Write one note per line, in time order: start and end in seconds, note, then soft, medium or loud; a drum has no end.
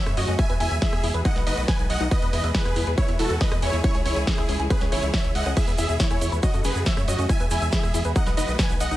0.00 0.38 C#3 medium
0.00 0.38 F#3 medium
0.00 0.38 A3 medium
0.00 1.21 E4 medium
0.00 0.38 F#4 medium
0.06 0.15 F#2 medium
0.06 cross-stick medium
0.06 closed hi-hat soft
0.17 0.26 F#2 loud
0.17 0.31 F#4 medium
0.17 0.24 C#5 medium
0.17 0.31 D#5 medium
0.17 0.32 D#5 medium
0.17 open hi-hat loud
0.28 0.36 F#2 loud
0.28 0.35 C#4 loud
0.39 1.24 B2 medium
0.39 1.24 E3 medium
0.39 1.24 G#3 medium
0.39 0.46 E4 medium
0.39 1.24 G#4 medium
0.39 0.53 E5 medium
0.39 0.53 G#5 loud
0.39 kick loud
0.39 closed hi-hat medium
0.50 0.58 E2 medium
0.50 0.54 B4 loud
0.50 closed hi-hat medium
0.60 0.69 E2 loud
0.60 0.67 E4 medium
0.60 0.75 E5 medium
0.60 0.75 G#5 medium
0.60 open hi-hat loud
0.71 0.79 E2 medium
0.71 0.78 E5 medium
0.71 closed hi-hat soft
0.82 0.92 E4 medium
0.82 1.10 G#4 medium
0.82 1.10 E5 loud
0.82 kick loud
0.82 snare loud
0.82 closed hi-hat medium
0.93 1.01 E2 medium
0.93 1.00 G#5 medium
0.93 cross-stick medium
0.93 closed hi-hat medium
1.03 1.12 E2 loud
1.03 1.08 E4 medium
1.03 open hi-hat loud
1.14 1.23 E2 medium
1.14 1.21 B4 medium
1.14 closed hi-hat medium
1.25 2.10 D#3 medium
1.25 2.11 F#3 medium
1.25 2.11 A3 medium
1.25 2.11 B3 medium
1.25 1.32 D#4 medium
1.25 2.11 F#4 medium
1.25 1.39 D#5 medium
1.25 1.39 F#5 medium
1.25 kick loud
1.25 cross-stick medium
1.25 closed hi-hat medium
1.36 1.44 B1 medium
1.36 1.46 B4 medium
1.36 snare soft
1.36 closed hi-hat medium
1.47 1.55 F#1 loud
1.47 1.54 D#4 medium
1.47 1.61 B4 medium
1.47 1.61 D#5 medium
1.47 open hi-hat loud
1.57 1.66 B1 medium
1.57 closed hi-hat medium
1.68 1.83 B4 medium
1.68 1.82 G#5 medium
1.68 1.83 G#5 medium
1.68 kick loud
1.68 snare loud
1.68 closed hi-hat medium
1.79 1.87 B1 medium
1.79 closed hi-hat soft
1.90 1.98 B1 loud
1.90 2.04 D#5 medium
1.90 1.97 D#5 medium
1.90 2.04 F#5 medium
1.90 open hi-hat loud
2.01 2.09 B1 loud
2.01 2.08 D#4 loud
2.01 closed hi-hat medium
2.11 3.82 B2 medium
2.11 5.53 E3 medium
2.11 6.39 G#3 medium
2.11 3.82 E4 medium
2.11 2.18 E4 medium
2.11 6.39 G#4 medium
2.11 2.26 B4 medium
2.11 2.26 D#5 loud
2.11 kick loud
2.11 closed hi-hat medium
2.22 2.31 E2 medium
2.22 2.26 B4 loud
2.22 closed hi-hat medium
2.33 2.41 E2 loud
2.33 2.40 E4 medium
2.33 2.47 B4 medium
2.33 2.47 D#5 medium
2.33 open hi-hat loud
2.44 2.52 E2 loud
2.44 2.51 E5 medium
2.44 closed hi-hat medium
2.55 2.65 E4 medium
2.55 2.83 G#4 medium
2.55 2.83 B4 loud
2.55 kick loud
2.55 snare loud
2.55 closed hi-hat medium
2.65 2.74 E2 medium
2.65 2.72 G#5 medium
2.65 cross-stick medium
2.65 closed hi-hat medium
2.76 2.84 E2 loud
2.76 2.80 E4 medium
2.76 open hi-hat loud
2.87 2.95 E2 loud
2.87 2.94 B4 medium
2.87 closed hi-hat medium
2.98 3.05 E4 medium
2.98 3.12 E4 medium
2.98 3.12 C#5 medium
2.98 kick loud
2.98 closed hi-hat medium
3.08 3.17 E2 medium
3.08 3.19 E5 medium
3.08 closed hi-hat medium
3.19 3.28 E1 loud
3.19 3.26 E4 medium
3.19 3.34 F#4 medium
3.19 3.34 A4 medium
3.19 open hi-hat loud
3.30 3.38 E2 loud
3.30 closed hi-hat medium
3.41 3.55 B4 medium
3.41 3.55 D#5 medium
3.41 kick loud
3.41 snare loud
3.41 closed hi-hat medium
3.52 3.60 E2 medium
3.52 cross-stick medium
3.52 closed hi-hat medium
3.62 3.71 E2 loud
3.62 3.77 E4 medium
3.62 3.77 C#5 medium
3.62 3.69 G#5 medium
3.62 open hi-hat loud
3.73 3.82 E2 medium
3.73 3.80 E4 loud
3.73 closed hi-hat medium
3.84 5.55 C#3 medium
3.84 3.91 C#4 medium
3.84 7.26 E4 medium
3.84 3.98 E4 medium
3.84 3.98 C#5 loud
3.84 kick loud
3.84 closed hi-hat medium
3.95 4.03 C#2 medium
3.95 3.99 G#4 loud
3.95 closed hi-hat medium
4.06 4.14 C#2 loud
4.06 4.13 C#4 medium
4.06 4.20 E4 medium
4.06 4.20 C#5 medium
4.06 4.20 C#5 loud
4.06 open hi-hat loud
4.16 4.25 C#2 loud
4.16 4.23 C#5 medium
4.16 closed hi-hat medium
4.27 4.38 C#4 medium
4.27 4.56 E4 medium
4.27 4.56 G#4 loud
4.27 kick loud
4.27 snare loud
4.27 open hi-hat medium
4.38 4.46 C#2 medium
4.38 4.45 E5 medium
4.38 cross-stick medium
4.38 closed hi-hat medium
4.49 4.57 C#2 loud
4.49 4.53 C#4 medium
4.49 open hi-hat loud
4.60 4.68 C#2 medium
4.60 4.67 G#4 loud
4.60 closed hi-hat medium
4.70 4.77 C#4 medium
4.70 4.85 G#4 medium
4.70 4.85 B4 medium
4.70 kick loud
4.70 cross-stick medium
4.70 closed hi-hat medium
4.81 4.90 C#2 medium
4.81 4.91 C#5 medium
4.81 snare soft
4.81 closed hi-hat medium
4.92 5.00 G#1 loud
4.92 4.99 C#4 medium
4.92 5.06 E4 medium
4.92 5.06 C#5 medium
4.92 cross-stick medium
4.92 open hi-hat loud
5.03 5.11 C#2 loud
5.03 closed hi-hat medium
5.14 5.28 C#5 medium
5.14 5.28 E5 medium
5.14 kick loud
5.14 snare loud
5.14 closed hi-hat medium
5.24 5.33 C#2 medium
5.24 closed hi-hat medium
5.35 5.44 C#2 loud
5.35 5.49 D#5 medium
5.35 5.42 E5 medium
5.35 5.49 F#5 medium
5.35 open hi-hat loud
5.46 5.54 C#2 loud
5.46 5.53 C#4 loud
5.46 cross-stick medium
5.46 closed hi-hat medium
5.57 6.42 B2 medium
5.57 6.42 E3 medium
5.57 5.64 E4 medium
5.57 5.71 G#4 medium
5.57 5.71 E5 loud
5.57 kick loud
5.57 closed hi-hat medium
5.57 crash medium
5.57 shaker soft
5.67 5.76 E2 medium
5.67 5.72 B4 loud
5.67 closed hi-hat medium
5.67 shaker soft
5.78 5.87 E2 loud
5.78 5.85 E4 medium
5.78 5.93 G#4 medium
5.78 5.93 E5 medium
5.78 open hi-hat loud
5.78 shaker medium
5.89 5.98 E2 medium
5.89 5.96 E5 medium
5.89 closed hi-hat medium
5.89 shaker soft
5.99 6.28 E4 medium
5.99 6.10 E4 medium
5.99 6.28 C#5 loud
5.99 kick loud
5.99 snare loud
5.99 closed hi-hat medium
5.99 shaker medium
6.11 6.19 E2 medium
6.11 6.18 G#5 medium
6.11 cross-stick medium
6.11 closed hi-hat medium
6.11 shaker soft
6.21 6.30 E2 loud
6.21 6.26 E4 medium
6.21 open hi-hat loud
6.21 shaker loud
6.32 6.41 E2 medium
6.32 6.39 B4 loud
6.32 closed hi-hat medium
6.32 shaker soft
6.43 7.29 C#3 medium
6.43 7.29 F#3 medium
6.43 7.29 A3 medium
6.43 6.50 C#4 medium
6.43 7.29 F#4 medium
6.43 6.57 F#4 medium
6.43 6.57 D#5 medium
6.43 kick loud
6.43 closed hi-hat medium
6.43 shaker medium
6.54 6.62 F#2 medium
6.54 6.64 A4 medium
6.54 closed hi-hat medium
6.54 shaker soft
6.64 6.73 F#1 loud
6.64 6.72 C#4 medium
6.64 6.79 G#4 medium
6.64 6.79 B4 medium
6.64 open hi-hat loud
6.64 shaker loud
6.75 6.84 F#2 loud
6.75 closed hi-hat medium
6.75 shaker soft
6.86 7.00 C#5 medium
6.86 7.00 E5 medium
6.86 7.01 E5 medium
6.86 kick loud
6.86 snare loud
6.86 closed hi-hat medium
6.86 shaker soft
6.97 7.05 F#2 medium
6.97 cross-stick medium
6.97 closed hi-hat medium
6.97 shaker soft
7.08 7.16 F#2 loud
7.08 7.22 F#4 medium
7.08 7.15 C#5 medium
7.08 7.22 D#5 medium
7.08 open hi-hat loud
7.08 shaker loud
7.19 7.27 F#2 loud
7.19 7.26 C#4 loud
7.19 closed hi-hat medium
7.19 shaker soft
7.29 8.15 B2 medium
7.29 8.15 E3 medium
7.29 8.15 G#3 medium
7.29 7.36 E4 medium
7.29 8.15 E4 medium
7.29 8.15 G#4 medium
7.29 7.44 E5 medium
7.29 7.44 G#5 loud
7.29 kick loud
7.29 closed hi-hat medium
7.29 shaker medium
7.40 7.49 E2 medium
7.40 7.44 B4 loud
7.40 closed hi-hat medium
7.40 shaker soft
7.51 7.59 E2 loud
7.51 7.58 E4 medium
7.51 7.65 E5 medium
7.51 7.65 G#5 medium
7.51 open hi-hat loud
7.51 shaker loud
7.62 7.70 E2 loud
7.62 7.69 E5 medium
7.62 closed hi-hat medium
7.62 shaker soft
7.73 7.83 E4 medium
7.73 8.01 G#4 medium
7.73 8.01 E5 loud
7.73 kick loud
7.73 snare loud
7.73 closed hi-hat medium
7.73 shaker medium
7.83 7.92 E2 medium
7.83 7.90 G#5 medium
7.83 cross-stick medium
7.83 closed hi-hat medium
7.83 shaker soft
7.94 8.03 E2 loud
7.94 7.98 E4 medium
7.94 open hi-hat loud
7.94 shaker medium
8.04 8.13 E2 medium
8.04 8.12 B4 loud
8.04 closed hi-hat medium
8.04 shaker soft
8.16 8.97 D#3 medium
8.16 8.97 F#3 medium
8.16 8.97 A3 medium
8.16 8.97 B3 medium
8.16 8.23 D#4 medium
8.16 8.97 F#4 medium
8.16 8.30 D#5 medium
8.16 8.30 F#5 medium
8.16 kick loud
8.16 cross-stick medium
8.16 closed hi-hat medium
8.16 shaker medium
8.26 8.35 B1 medium
8.26 8.37 B4 medium
8.26 snare soft
8.26 closed hi-hat medium
8.26 shaker soft
8.37 8.46 F#1 medium
8.37 8.44 D#4 medium
8.37 8.51 B4 medium
8.37 8.51 D#5 medium
8.37 8.52 D#5 medium
8.37 open hi-hat loud
8.37 shaker loud
8.48 8.56 B1 medium
8.48 closed hi-hat medium
8.48 shaker soft
8.59 8.73 B4 medium
8.59 8.73 G#5 medium
8.59 kick loud
8.59 snare loud
8.59 closed hi-hat medium
8.59 shaker medium
8.70 8.78 B1 medium
8.70 closed hi-hat medium
8.70 shaker soft
8.80 8.89 B1 loud
8.80 8.95 D#5 medium
8.80 8.88 D#5 medium
8.80 8.95 F#5 medium
8.80 open hi-hat loud
8.80 shaker loud
8.91 8.97 B1 loud
8.91 8.97 D#4 loud
8.91 closed hi-hat medium
8.91 shaker soft